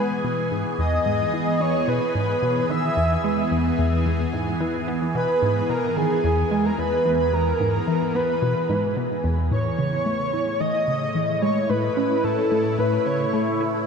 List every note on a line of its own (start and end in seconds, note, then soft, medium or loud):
0.00 9.51 E3 medium
0.00 0.23 G#3 medium
0.00 10.49 B3 medium
0.00 11.23 G#4 medium
0.00 0.52 B4 medium
0.00 10.52 G#5 medium
0.24 0.50 B2 medium
0.51 0.63 G#2 medium
0.79 0.99 E2 medium
0.79 1.62 D#5 loud
1.06 1.26 G#2 medium
1.33 1.59 E3 medium
1.61 1.80 B3 medium
1.61 1.90 C#5 medium
1.88 2.00 B2 medium
1.88 2.71 B4 loud
2.15 2.35 G#2 medium
2.42 2.62 B2 medium
2.70 2.90 D#3 medium
2.70 3.51 E5 loud
2.97 3.17 E2 medium
3.24 3.44 G#3 loud
3.51 3.71 E2 medium
3.79 4.05 E2 loud
4.06 4.26 E2 medium
4.33 4.53 G#2 medium
4.61 4.86 E3 medium
4.88 5.08 B3 medium
5.15 5.27 B2 medium
5.15 5.71 B4 loud
5.42 5.62 G#2 medium
5.70 5.90 B2 medium
5.70 5.98 A#4 loud
5.97 6.17 D#3 medium
5.97 6.67 G#4 medium
6.24 6.44 E2 loud
6.51 6.71 G#3 medium
6.65 6.80 A#4 medium
6.79 6.99 E2 medium
6.79 7.19 B4 loud
7.06 7.32 E2 loud
7.20 7.35 B4 medium
7.33 7.53 E2 medium
7.33 8.17 A#4 loud
7.60 7.80 G#2 medium
7.88 8.14 E3 medium
8.15 8.35 B3 medium
8.15 8.97 B4 loud
8.42 8.54 B2 medium
8.69 8.95 G#2 medium
8.97 9.17 B2 medium
9.24 9.50 E2 loud
9.51 13.87 A2 medium
9.51 9.71 A2 medium
9.51 10.62 C#5 loud
9.64 13.87 A3 medium
9.79 9.99 C#3 medium
10.05 10.32 A3 medium
10.05 13.87 E4 medium
10.33 10.53 E4 medium
10.60 10.72 E3 medium
10.60 11.41 D#5 loud
10.88 11.08 C#3 medium
10.98 13.87 C#5 medium
11.15 11.35 E3 medium
11.42 11.62 G#3 medium
11.42 11.71 C#5 loud
11.69 11.90 A2 medium
11.69 12.25 B4 loud
11.97 12.17 C#4 loud
12.24 12.44 A2 medium
12.24 12.80 A4 loud
12.51 12.77 A2 loud
12.79 12.99 A2 medium
12.79 13.07 B4 loud
13.06 13.26 C#3 medium
13.06 13.60 C#5 medium
13.33 13.59 A3 medium
13.61 13.80 E4 medium